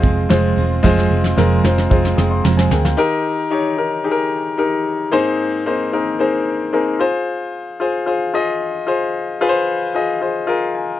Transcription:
Already playing: grand piano G#3 C4 F4 C5 D#5
0.02 picked electric bass F1, steel-string acoustic guitar F3 G#3 C4 G#4, kick, closed hi-hat, shaker
0.18 closed hi-hat, shaker
0.29 picked electric bass F1, steel-string acoustic guitar F2 C3 F3 G#3 C4 G#4, grand piano G#3 C4 F4 C5, snare, closed hi-hat, shaker
0.44 shaker
0.57 picked electric bass E1, steel-string acoustic guitar F3 G#3 C4 G#4, open hi-hat
0.71 shaker
0.83 picked electric bass F1, steel-string acoustic guitar F2 C3 F3 G#3 C4 G#4, grand piano G#3 C4 F4 C5, kick, snare, shaker
0.98 snare, shaker
1.10 picked electric bass F1, steel-string acoustic guitar G#3 C4 G#4, shaker
1.24 snare, shaker
1.36 picked electric bass F1, steel-string acoustic guitar F2 C3 F3 G#3 C4 G#4, grand piano G#3 C4 F4 A#4, snare, shaker
1.51 shaker
1.63 picked electric bass F1, steel-string acoustic guitar F3 G#3 C4 G#4, grand piano G#3 C4 F4 C5, snare, shaker
1.78 snare, shaker
1.90 picked electric bass F1, steel-string acoustic guitar F3 G#3 C4, grand piano G#3 C4 F4 C5, kick, shaker
1.94 steel-string acoustic guitar G#4
2.05 snare, shaker
2.17 picked electric bass F1, steel-string acoustic guitar F3 G#3 C4 G#4, grand piano G5 D#6, snare, shaker
2.31 grand piano D#5 C6, shaker
2.44 picked electric bass F1, steel-string acoustic guitar F2 C3 F3 G#3 C4 G#4, grand piano A#5, snare, shaker
2.57 grand piano C5 G#5, snare, shaker
2.71 picked electric bass D2, steel-string acoustic guitar F3 G#3 C4 G#4, grand piano A#4 G5, snare, shaker
2.84 grand piano G#4 F5, snare, shaker
2.97 grand piano D#3 D#4 G4 A#4
3.50 grand piano D#4 G4 C#5
3.77 grand piano D#4 G4 A#4
4.04 grand piano D#4 G4 G#4
4.12 grand piano A#4
4.58 grand piano D#4 G4 A#4
5.12 grand piano G#2 A#3 C4 D#4 G#4 C5
5.66 grand piano A#3 C4 D#4 G#4 C5
5.92 grand piano A#3 C4 D#4 G#4 A#4
6.19 grand piano A#3 C4 D#4 G#4 C5
6.73 grand piano A#3 C4 D#4 G#4 A#4
6.99 grand piano F4 G#4 C5
7.80 grand piano F4 G#4 C5
8.06 grand piano F4 G#4 C5
8.34 grand piano F4 G#4 D#5
8.87 grand piano F4 G#4 C5
9.41 grand piano F4 G#4 B4
9.49 grand piano C5
9.95 grand piano F4 G#4 D#5
10.21 grand piano F4 G#4 C5
10.47 grand piano F4 G#4 A#4
10.75 grand piano G#5

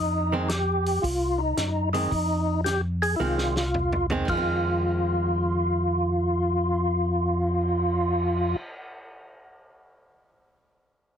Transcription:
Already playing: tonewheel organ F2 D#4
0.32 hollow-body jazz guitar D#3 G#3 C4
0.49 tonewheel organ G4, snare, closed hi-hat
0.86 open hi-hat
1.02 tonewheel organ C2 F4, kick, open hi-hat
1.38 tonewheel organ D#4
1.57 tonewheel organ F#2, snare, closed hi-hat
1.93 hollow-body jazz guitar D#3 G#3 C4, tonewheel organ D#4, open hi-hat
2.11 tonewheel organ F2, kick, open hi-hat
2.64 tonewheel organ G4, snare, closed hi-hat
3.02 tonewheel organ G#4, open hi-hat
3.16 tonewheel organ C2 E4 F4, hollow-body jazz guitar D#3
3.20 hollow-body jazz guitar G#3 C4
3.38 snare
3.56 snare
3.74 floor tom
3.93 floor tom
4.10 hollow-body jazz guitar D#3 G#3 C4, floor tom
4.25 tonewheel organ F2, hollow-body jazz guitar D#3, kick, crash
4.29 hollow-body jazz guitar G#3, tonewheel organ F4
4.37 hollow-body jazz guitar C4
4.65 cymbal swell

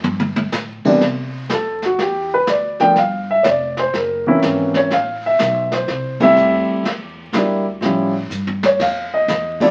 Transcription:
0.03 upright bass G2, high tom
0.20 mid tom
0.36 mid tom
0.52 upright bass A2, snare, hi-hat pedal
0.85 grand piano C2 E3 G3 B3 D4, muted upright bass stroke, kick, crash
1.01 upright bass C3, brush sweep, snare
1.49 upright bass F2, grand piano A4, snare, hi-hat pedal
1.82 grand piano F#4, snare
1.99 upright bass E2, grand piano G4, brush sweep, snare
2.34 grand piano B4
2.47 upright bass D2, grand piano D5, snare, hi-hat pedal
2.80 grand piano F3 A3 A#3 D4 G5, snare
2.96 upright bass G1, grand piano F5, brush sweep, snare
3.31 grand piano E5
3.43 upright bass F1, grand piano C#5, snare, hi-hat pedal
3.48 grand piano D5
3.77 grand piano C5, snare
3.93 upright bass F#1, grand piano A#4, brush sweep, snare
4.27 grand piano E3 A#3 C4 C#4 E4
4.42 upright bass G#1, snare, hi-hat pedal
4.74 grand piano C#5, kick, snare
4.90 upright bass A1, grand piano F5, brush sweep, snare
5.26 grand piano E5
5.39 upright bass B1, snare, hi-hat pedal
5.72 grand piano C5, snare
5.88 upright bass C2, brush sweep, snare
6.20 grand piano G3 A3 C4 E4 E5, kick, ride
6.36 upright bass F2, hi-hat pedal
6.68 muted upright bass stroke
6.84 upright bass E2, brush sweep, snare
7.32 upright bass D2, grand piano G3 A#3 D4 E4, snare, hi-hat pedal
7.81 upright bass A2, grand piano F3 G3 C#4 E4, brush sweep, snare
8.30 upright bass G2, hi-hat pedal
8.47 floor tom
8.63 grand piano C#5, snare
8.79 upright bass F2, grand piano F5, brush sweep, kick, snare, crash
9.14 grand piano D#5
9.28 upright bass E2, snare, hi-hat pedal
9.60 grand piano F3 A3 C4 E4 D5, kick, ride

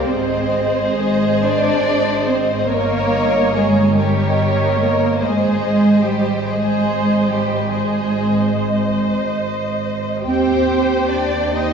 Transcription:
0.06 double bass section G#1, cello section C4, viola section G#4 C5, violin section C5 D#5
0.97 cello section G#3, violin section G#4
1.43 cello section D4, violin section D5
2.26 cello section C4, violin section C5
2.69 double bass section G1, cello section A#3, violin section A#4 D#5, viola section A#4 C#5
3.55 cello section G#3, violin section G#4
3.96 cello section G3, violin section G4 D#5, viola section A#4 C#5
4.79 cello section A#3, violin section A#4
5.19 double bass section G#1, cello section G#3, violin section G#4 D#5, viola section C5
6.04 cello section G3, violin section G4
6.45 cello section G#3, violin section G#4 D#5, viola section C5
7.29 cello section G3, violin section G4
7.69 cello section G#3, violin section G#4 D#5, viola section C5
10.24 double bass section D#2, cello section C4, viola section G4 C5, violin section C5 G5
11.08 cello section D4, violin section D5
11.52 cello section D#4, viola section G4 C5, violin section C5 D#5 G5

